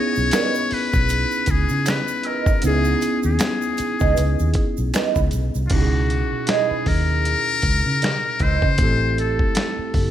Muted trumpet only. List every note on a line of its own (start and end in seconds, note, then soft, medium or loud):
0.00 0.75 C#5 loud
0.74 1.52 B4 loud
1.51 1.91 G#4 medium
1.89 2.29 B4 medium
2.27 2.64 A#4 medium
2.66 3.21 G#4 loud
3.26 4.75 G#4 medium
5.67 5.75 F4 medium
5.73 6.52 F#4 medium
6.50 6.90 G#4 medium
6.88 8.44 A#4 loud
8.43 9.18 C5 loud
9.20 10.11 A4 medium